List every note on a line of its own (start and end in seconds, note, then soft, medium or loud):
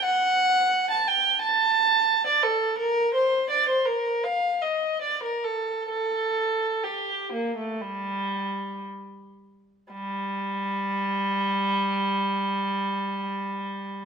0.05 0.89 F#5 medium
0.91 1.07 A5 medium
1.07 1.42 G5 medium
1.41 2.25 A5 medium
2.27 2.44 D5 medium
2.43 2.79 A4 medium
2.78 3.13 A#4 medium
3.14 3.50 C5 medium
3.50 3.68 D5 medium
3.69 3.87 C5 medium
3.85 4.24 A#4 medium
4.23 4.62 F5 medium
4.62 5.02 D#5 medium
5.01 5.22 D5 medium
5.23 5.44 A#4 medium
5.43 5.87 A4 medium
5.89 6.82 A4 medium
6.84 7.33 G4 medium
7.32 7.57 A#3 soft
7.57 7.81 A3 soft
7.81 8.85 G3 medium
9.93 14.05 G3 medium